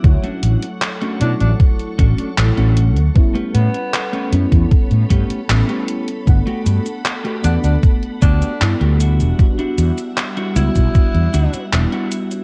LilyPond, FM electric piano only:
\new Staff \with { instrumentName = "FM electric piano" } { \time 4/4 \key e \dorian \tempo 4 = 77 <fis a e' cis''>4. <fis a e' cis''>4. <fis a e' cis''>4 | <g b cis' e'>4. <g b cis' e'>4. <g b cis' e'>4 | <a b d' fis''>4. <a b d' fis''>4. <g b d' e'>4 | <g b d' fis'>4. <g b d' fis'>4. <g b d' e'>4 | }